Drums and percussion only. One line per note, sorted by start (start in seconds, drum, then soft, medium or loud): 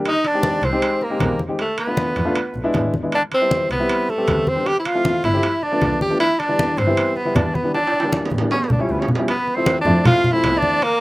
0.05 high conga soft
0.05 high timbale medium
0.24 high conga soft
0.24 high timbale medium
0.43 high conga medium
0.43 low timbale medium
0.63 high conga soft
0.63 high timbale medium
0.82 high conga soft
0.82 high timbale medium
1.01 high conga soft
1.20 high conga medium
1.20 high timbale medium
1.20 low timbale medium
1.39 high conga medium
1.59 high conga soft
1.59 high timbale medium
1.78 high conga soft
1.78 high timbale medium
1.97 high conga medium
1.97 low timbale medium
2.16 high conga soft
2.16 high timbale medium
2.35 high conga soft
2.35 high timbale medium
2.55 high conga soft
2.74 high conga medium
2.74 high timbale medium
2.74 low timbale medium
2.94 high conga medium
3.12 high conga soft
3.12 high timbale medium
3.32 high conga soft
3.32 high timbale medium
3.51 high conga loud
3.51 low timbale medium
3.71 high conga soft
3.71 high timbale medium
3.89 high conga soft
3.89 high timbale medium
4.09 high conga soft
4.28 high conga medium
4.28 high timbale medium
4.28 low timbale medium
4.47 high conga medium
4.66 high conga soft
4.66 high timbale medium
4.85 high conga soft
4.85 high timbale medium
5.05 high conga medium
5.05 low timbale medium
5.24 high conga soft
5.24 high timbale medium
5.43 high conga soft
5.43 high timbale medium
5.63 high conga soft
5.82 high conga medium
5.82 high timbale medium
5.82 low timbale medium
6.01 high conga medium
6.20 high conga soft
6.20 high timbale medium
6.40 high conga soft
6.40 high timbale medium
6.59 high conga medium
6.59 low timbale medium
6.78 high conga soft
6.78 high timbale medium
6.97 high conga soft
6.97 high timbale medium
7.17 high conga soft
7.36 high conga medium
7.36 high timbale medium
7.36 low timbale medium
7.55 high conga medium
7.74 high conga soft
7.74 high timbale medium
7.87 high timbale medium
7.93 high conga soft
8.00 high timbale medium
8.13 high conga medium
8.13 high timbale medium
8.25 low timbale medium
8.31 high conga medium
8.38 low timbale medium
8.51 low timbale loud
8.64 low timbale medium
8.70 low conga medium
9.02 low timbale medium
9.08 low conga medium
9.15 low timbale medium
9.28 high conga soft
9.28 high timbale medium
9.47 high conga soft
9.66 high conga medium
9.66 high timbale medium
9.66 low timbale medium
9.86 high conga soft
10.05 high conga soft
10.05 low conga medium
10.05 high timbale medium
10.24 high conga soft
10.24 low conga medium
10.43 high conga soft
10.43 high timbale medium
10.43 low timbale medium
10.62 high conga medium
10.82 high conga soft
10.82 high timbale medium